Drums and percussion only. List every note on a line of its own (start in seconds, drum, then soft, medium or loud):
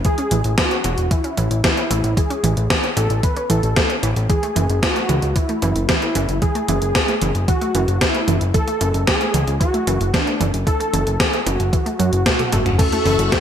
0.05 kick loud
0.05 closed hi-hat medium
0.18 closed hi-hat soft
0.31 closed hi-hat medium
0.44 closed hi-hat soft
0.58 kick loud
0.58 snare loud
0.58 closed hi-hat medium
0.71 closed hi-hat soft
0.84 closed hi-hat loud
0.98 closed hi-hat soft
1.11 kick loud
1.11 closed hi-hat medium
1.24 closed hi-hat soft
1.37 closed hi-hat medium
1.51 closed hi-hat soft
1.64 kick loud
1.64 snare loud
1.64 closed hi-hat medium
1.77 closed hi-hat soft
1.91 closed hi-hat loud
2.04 closed hi-hat soft
2.17 kick loud
2.17 closed hi-hat medium
2.31 closed hi-hat soft
2.44 closed hi-hat medium
2.57 closed hi-hat soft
2.70 kick loud
2.70 snare loud
2.70 closed hi-hat medium
2.84 closed hi-hat soft
2.97 closed hi-hat loud
3.10 closed hi-hat soft
3.23 kick loud
3.23 closed hi-hat medium
3.37 closed hi-hat soft
3.50 closed hi-hat medium
3.63 closed hi-hat soft
3.76 kick loud
3.76 snare loud
3.76 closed hi-hat medium
3.90 closed hi-hat soft
4.03 closed hi-hat medium
4.16 closed hi-hat soft
4.30 kick loud
4.30 closed hi-hat medium
4.43 closed hi-hat soft
4.56 closed hi-hat medium
4.70 closed hi-hat soft
4.83 kick loud
4.83 snare loud
4.83 closed hi-hat medium
4.96 closed hi-hat soft
5.09 closed hi-hat medium
5.22 closed hi-hat soft
5.36 kick loud
5.36 closed hi-hat medium
5.49 closed hi-hat soft
5.62 closed hi-hat medium
5.76 closed hi-hat soft
5.89 kick loud
5.89 snare loud
5.89 closed hi-hat medium
6.02 closed hi-hat soft
6.15 closed hi-hat medium
6.29 closed hi-hat soft
6.42 kick loud
6.42 closed hi-hat medium
6.55 closed hi-hat soft
6.68 closed hi-hat medium
6.82 closed hi-hat soft
6.95 kick loud
6.95 snare loud
6.95 closed hi-hat medium
7.08 closed hi-hat soft
7.22 closed hi-hat medium
7.35 closed hi-hat soft
7.48 kick loud
7.48 closed hi-hat medium
7.61 closed hi-hat soft
7.75 closed hi-hat medium
7.88 closed hi-hat soft
8.01 kick loud
8.01 snare loud
8.01 closed hi-hat medium
8.15 closed hi-hat soft
8.28 closed hi-hat medium
8.41 closed hi-hat soft
8.54 kick loud
8.54 closed hi-hat medium
8.68 closed hi-hat soft
8.81 closed hi-hat medium
8.94 closed hi-hat soft
9.07 kick loud
9.07 snare loud
9.07 closed hi-hat medium
9.21 closed hi-hat soft
9.34 closed hi-hat medium
9.48 closed hi-hat soft
9.61 kick loud
9.61 closed hi-hat medium
9.74 closed hi-hat soft
9.87 closed hi-hat medium
10.01 closed hi-hat soft
10.14 kick loud
10.14 snare loud
10.14 closed hi-hat medium
10.27 closed hi-hat soft
10.41 closed hi-hat medium
10.54 closed hi-hat soft
10.67 kick loud
10.67 closed hi-hat medium
10.80 closed hi-hat soft
10.94 closed hi-hat medium
11.07 closed hi-hat soft
11.20 kick loud
11.20 snare loud
11.20 closed hi-hat medium
11.33 closed hi-hat soft
11.47 closed hi-hat loud
11.60 closed hi-hat soft
11.73 kick loud
11.73 closed hi-hat medium
11.86 closed hi-hat soft
12.00 closed hi-hat medium
12.13 closed hi-hat soft
12.26 kick loud
12.26 snare loud
12.26 closed hi-hat medium
12.26 high tom medium
12.39 snare soft
12.39 closed hi-hat soft
12.39 high tom medium
12.52 closed hi-hat loud
12.52 mid tom medium
12.66 closed hi-hat soft
12.66 mid tom medium
12.79 kick loud
12.79 closed hi-hat medium
12.79 crash loud
12.92 closed hi-hat soft
13.06 open hi-hat medium
13.19 closed hi-hat soft
13.32 kick loud
13.32 snare loud
13.32 closed hi-hat medium